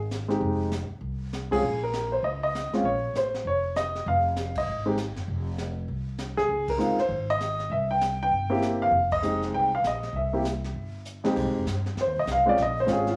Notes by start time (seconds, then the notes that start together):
Already playing: G#1
0.11 snare, hi-hat pedal
0.28 G#3 C4 D#4 G4, snare
0.41 F1, brush sweep
0.72 snare, hi-hat pedal
0.90 muted upright bass stroke
1.01 C2, brush sweep
1.33 snare, hi-hat pedal
1.51 G#3 C4 C#4 F4 G#4, kick, ride
1.62 A#1, brush sweep
1.83 A#4
1.93 snare, hi-hat pedal
2.12 C5
2.23 C#2 D#5, brush sweep
2.43 D#5
2.55 snare, hi-hat pedal
2.72 G#3 C4 C#4 F4, muted upright bass stroke, snare
2.83 A#1 C#5, brush sweep
3.14 A1 C5, snare, hi-hat pedal
3.34 snare
3.45 F1 C#5, brush sweep
3.76 D#5, snare, hi-hat pedal
3.95 snare
4.06 F1 F5, brush sweep
4.36 snare, hi-hat pedal
4.55 C2 D#5, kick, ride
4.67 G#1, brush sweep
4.86 G#3 C4 D#4 G4
4.97 snare, hi-hat pedal
5.16 F#1, snare
5.28 F1, brush sweep
5.58 snare, hi-hat pedal
5.88 C2, brush sweep
6.18 snare, hi-hat pedal
6.37 D2 G#4, snare
6.48 C#2, brush sweep
6.68 A#4, kick, ride
6.78 G#3 C4 D#4 F4, hi-hat pedal
6.97 C5, muted upright bass stroke, snare
7.09 G#1, brush sweep
7.30 D#5
7.40 snare, hi-hat pedal
7.60 snare
7.70 C2 E5, brush sweep
7.91 G5
8.01 snare, hi-hat pedal
8.23 G5
8.31 G1, brush sweep
8.50 A#3 C4 E4 G4
8.62 snare, hi-hat pedal
8.82 F5
8.91 F1, brush sweep
9.11 D#5, kick, ride
9.22 G#3 C4 D#4 G4, hi-hat pedal
9.42 snare
9.52 C2 G5, brush sweep
9.75 F5
9.82 A#1, snare, hi-hat pedal
9.87 D#5
10.03 snare
10.13 C2 E5, brush sweep
10.33 A#3 C4 E4 G4
10.45 snare, hi-hat pedal
10.64 snare
10.74 G1, brush sweep
11.05 hi-hat pedal
11.24 F2 G#3 C4 D#4 G4, snare
11.36 C2, brush sweep, kick, snare, crash
11.45 G#1
11.56 F1
11.66 G2, snare, hi-hat pedal
11.86 snare
11.95 F2, brush sweep, snare
12.01 C5
12.06 D#2
12.16 C2 D#5
12.26 C2, snare, hi-hat pedal
12.31 F5
12.46 G#3 C4 C#4 F4 D5
12.56 A#1, brush sweep, snare
12.62 D#5
12.80 C5
12.86 G#1 G#3 C4 C#4 F4, snare, hi-hat pedal
12.93 G#4
13.07 F4, snare